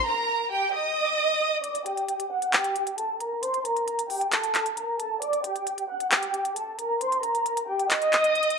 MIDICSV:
0, 0, Header, 1, 3, 480
1, 0, Start_track
1, 0, Key_signature, -2, "minor"
1, 0, Tempo, 447761
1, 1755, Time_signature, 4, 2, 24, 8
1, 9205, End_track
2, 0, Start_track
2, 0, Title_t, "Violin section"
2, 0, Program_c, 0, 48
2, 72, Note_on_c, 0, 82, 85
2, 81, Note_on_c, 0, 70, 63
2, 524, Note_off_c, 0, 82, 0
2, 529, Note_off_c, 0, 70, 0
2, 551, Note_on_c, 0, 79, 85
2, 559, Note_on_c, 0, 67, 68
2, 776, Note_off_c, 0, 79, 0
2, 781, Note_off_c, 0, 67, 0
2, 792, Note_on_c, 0, 75, 95
2, 800, Note_on_c, 0, 87, 77
2, 1711, Note_off_c, 0, 75, 0
2, 1715, Note_off_c, 0, 87, 0
2, 1755, Note_on_c, 0, 74, 99
2, 1763, Note_on_c, 0, 86, 79
2, 1978, Note_off_c, 0, 74, 0
2, 1983, Note_off_c, 0, 86, 0
2, 1995, Note_on_c, 0, 79, 77
2, 2003, Note_on_c, 0, 67, 64
2, 2446, Note_off_c, 0, 79, 0
2, 2451, Note_off_c, 0, 67, 0
2, 2482, Note_on_c, 0, 78, 93
2, 2491, Note_on_c, 0, 90, 64
2, 2702, Note_off_c, 0, 78, 0
2, 2707, Note_off_c, 0, 90, 0
2, 2719, Note_on_c, 0, 79, 87
2, 2728, Note_on_c, 0, 67, 70
2, 3168, Note_off_c, 0, 79, 0
2, 3173, Note_off_c, 0, 67, 0
2, 3194, Note_on_c, 0, 81, 88
2, 3202, Note_on_c, 0, 69, 62
2, 3418, Note_off_c, 0, 81, 0
2, 3422, Note_off_c, 0, 69, 0
2, 3442, Note_on_c, 0, 82, 81
2, 3450, Note_on_c, 0, 70, 62
2, 3662, Note_off_c, 0, 82, 0
2, 3667, Note_off_c, 0, 70, 0
2, 3675, Note_on_c, 0, 84, 103
2, 3684, Note_on_c, 0, 72, 83
2, 3899, Note_off_c, 0, 84, 0
2, 3903, Note_off_c, 0, 72, 0
2, 3915, Note_on_c, 0, 82, 90
2, 3924, Note_on_c, 0, 70, 64
2, 4366, Note_off_c, 0, 82, 0
2, 4371, Note_off_c, 0, 70, 0
2, 4396, Note_on_c, 0, 79, 88
2, 4404, Note_on_c, 0, 67, 63
2, 4619, Note_off_c, 0, 79, 0
2, 4623, Note_off_c, 0, 67, 0
2, 4630, Note_on_c, 0, 81, 95
2, 4639, Note_on_c, 0, 69, 71
2, 5084, Note_off_c, 0, 81, 0
2, 5088, Note_off_c, 0, 69, 0
2, 5114, Note_on_c, 0, 82, 81
2, 5123, Note_on_c, 0, 70, 60
2, 5338, Note_off_c, 0, 82, 0
2, 5343, Note_off_c, 0, 70, 0
2, 5357, Note_on_c, 0, 81, 86
2, 5365, Note_on_c, 0, 69, 71
2, 5579, Note_off_c, 0, 81, 0
2, 5584, Note_off_c, 0, 69, 0
2, 5592, Note_on_c, 0, 74, 103
2, 5601, Note_on_c, 0, 86, 81
2, 5817, Note_off_c, 0, 74, 0
2, 5821, Note_off_c, 0, 86, 0
2, 5838, Note_on_c, 0, 79, 82
2, 5847, Note_on_c, 0, 67, 66
2, 6288, Note_off_c, 0, 79, 0
2, 6293, Note_off_c, 0, 67, 0
2, 6315, Note_on_c, 0, 78, 78
2, 6324, Note_on_c, 0, 90, 67
2, 6539, Note_off_c, 0, 78, 0
2, 6543, Note_off_c, 0, 90, 0
2, 6552, Note_on_c, 0, 79, 93
2, 6561, Note_on_c, 0, 67, 76
2, 7005, Note_off_c, 0, 79, 0
2, 7009, Note_off_c, 0, 67, 0
2, 7034, Note_on_c, 0, 81, 74
2, 7042, Note_on_c, 0, 69, 64
2, 7258, Note_off_c, 0, 81, 0
2, 7262, Note_off_c, 0, 69, 0
2, 7284, Note_on_c, 0, 82, 82
2, 7292, Note_on_c, 0, 70, 71
2, 7503, Note_off_c, 0, 82, 0
2, 7508, Note_off_c, 0, 70, 0
2, 7514, Note_on_c, 0, 84, 109
2, 7522, Note_on_c, 0, 72, 72
2, 7738, Note_off_c, 0, 84, 0
2, 7742, Note_off_c, 0, 72, 0
2, 7752, Note_on_c, 0, 82, 89
2, 7761, Note_on_c, 0, 70, 66
2, 8205, Note_off_c, 0, 82, 0
2, 8209, Note_off_c, 0, 70, 0
2, 8231, Note_on_c, 0, 79, 89
2, 8239, Note_on_c, 0, 67, 69
2, 8456, Note_off_c, 0, 79, 0
2, 8461, Note_off_c, 0, 67, 0
2, 8473, Note_on_c, 0, 75, 98
2, 8481, Note_on_c, 0, 87, 77
2, 9205, Note_off_c, 0, 75, 0
2, 9205, Note_off_c, 0, 87, 0
2, 9205, End_track
3, 0, Start_track
3, 0, Title_t, "Drums"
3, 1755, Note_on_c, 9, 42, 84
3, 1862, Note_off_c, 9, 42, 0
3, 1875, Note_on_c, 9, 42, 57
3, 1982, Note_off_c, 9, 42, 0
3, 1993, Note_on_c, 9, 42, 71
3, 2100, Note_off_c, 9, 42, 0
3, 2116, Note_on_c, 9, 42, 51
3, 2223, Note_off_c, 9, 42, 0
3, 2235, Note_on_c, 9, 42, 77
3, 2342, Note_off_c, 9, 42, 0
3, 2356, Note_on_c, 9, 42, 79
3, 2463, Note_off_c, 9, 42, 0
3, 2595, Note_on_c, 9, 42, 60
3, 2703, Note_off_c, 9, 42, 0
3, 2715, Note_on_c, 9, 39, 123
3, 2715, Note_on_c, 9, 42, 83
3, 2822, Note_off_c, 9, 42, 0
3, 2823, Note_off_c, 9, 39, 0
3, 2834, Note_on_c, 9, 42, 53
3, 2941, Note_off_c, 9, 42, 0
3, 2955, Note_on_c, 9, 42, 75
3, 3062, Note_off_c, 9, 42, 0
3, 3075, Note_on_c, 9, 42, 64
3, 3182, Note_off_c, 9, 42, 0
3, 3194, Note_on_c, 9, 42, 70
3, 3302, Note_off_c, 9, 42, 0
3, 3435, Note_on_c, 9, 42, 73
3, 3543, Note_off_c, 9, 42, 0
3, 3675, Note_on_c, 9, 42, 83
3, 3782, Note_off_c, 9, 42, 0
3, 3795, Note_on_c, 9, 42, 58
3, 3902, Note_off_c, 9, 42, 0
3, 3913, Note_on_c, 9, 42, 72
3, 4020, Note_off_c, 9, 42, 0
3, 4036, Note_on_c, 9, 42, 50
3, 4144, Note_off_c, 9, 42, 0
3, 4155, Note_on_c, 9, 42, 79
3, 4262, Note_off_c, 9, 42, 0
3, 4276, Note_on_c, 9, 42, 79
3, 4383, Note_off_c, 9, 42, 0
3, 4395, Note_on_c, 9, 46, 74
3, 4502, Note_off_c, 9, 46, 0
3, 4516, Note_on_c, 9, 42, 60
3, 4623, Note_off_c, 9, 42, 0
3, 4635, Note_on_c, 9, 39, 119
3, 4635, Note_on_c, 9, 42, 84
3, 4742, Note_off_c, 9, 42, 0
3, 4743, Note_off_c, 9, 39, 0
3, 4754, Note_on_c, 9, 42, 53
3, 4861, Note_off_c, 9, 42, 0
3, 4875, Note_on_c, 9, 39, 90
3, 4875, Note_on_c, 9, 42, 73
3, 4982, Note_off_c, 9, 39, 0
3, 4982, Note_off_c, 9, 42, 0
3, 4995, Note_on_c, 9, 42, 64
3, 5102, Note_off_c, 9, 42, 0
3, 5114, Note_on_c, 9, 42, 69
3, 5221, Note_off_c, 9, 42, 0
3, 5355, Note_on_c, 9, 42, 72
3, 5463, Note_off_c, 9, 42, 0
3, 5595, Note_on_c, 9, 42, 85
3, 5702, Note_off_c, 9, 42, 0
3, 5715, Note_on_c, 9, 42, 58
3, 5822, Note_off_c, 9, 42, 0
3, 5833, Note_on_c, 9, 42, 76
3, 5940, Note_off_c, 9, 42, 0
3, 5957, Note_on_c, 9, 42, 50
3, 6064, Note_off_c, 9, 42, 0
3, 6076, Note_on_c, 9, 42, 77
3, 6183, Note_off_c, 9, 42, 0
3, 6196, Note_on_c, 9, 42, 78
3, 6303, Note_off_c, 9, 42, 0
3, 6436, Note_on_c, 9, 42, 62
3, 6543, Note_off_c, 9, 42, 0
3, 6555, Note_on_c, 9, 42, 83
3, 6556, Note_on_c, 9, 39, 120
3, 6662, Note_off_c, 9, 42, 0
3, 6663, Note_off_c, 9, 39, 0
3, 6674, Note_on_c, 9, 42, 51
3, 6782, Note_off_c, 9, 42, 0
3, 6795, Note_on_c, 9, 42, 77
3, 6902, Note_off_c, 9, 42, 0
3, 6915, Note_on_c, 9, 42, 64
3, 7022, Note_off_c, 9, 42, 0
3, 7035, Note_on_c, 9, 42, 71
3, 7142, Note_off_c, 9, 42, 0
3, 7275, Note_on_c, 9, 42, 71
3, 7382, Note_off_c, 9, 42, 0
3, 7515, Note_on_c, 9, 42, 86
3, 7622, Note_off_c, 9, 42, 0
3, 7635, Note_on_c, 9, 42, 57
3, 7742, Note_off_c, 9, 42, 0
3, 7753, Note_on_c, 9, 42, 72
3, 7860, Note_off_c, 9, 42, 0
3, 7876, Note_on_c, 9, 42, 50
3, 7984, Note_off_c, 9, 42, 0
3, 7995, Note_on_c, 9, 42, 79
3, 8103, Note_off_c, 9, 42, 0
3, 8116, Note_on_c, 9, 42, 80
3, 8223, Note_off_c, 9, 42, 0
3, 8356, Note_on_c, 9, 42, 62
3, 8463, Note_off_c, 9, 42, 0
3, 8475, Note_on_c, 9, 42, 81
3, 8476, Note_on_c, 9, 39, 117
3, 8582, Note_off_c, 9, 42, 0
3, 8583, Note_off_c, 9, 39, 0
3, 8594, Note_on_c, 9, 42, 54
3, 8701, Note_off_c, 9, 42, 0
3, 8715, Note_on_c, 9, 39, 90
3, 8715, Note_on_c, 9, 42, 74
3, 8822, Note_off_c, 9, 39, 0
3, 8822, Note_off_c, 9, 42, 0
3, 8835, Note_on_c, 9, 42, 63
3, 8942, Note_off_c, 9, 42, 0
3, 8955, Note_on_c, 9, 42, 60
3, 9035, Note_off_c, 9, 42, 0
3, 9035, Note_on_c, 9, 42, 62
3, 9115, Note_off_c, 9, 42, 0
3, 9115, Note_on_c, 9, 42, 61
3, 9205, Note_off_c, 9, 42, 0
3, 9205, End_track
0, 0, End_of_file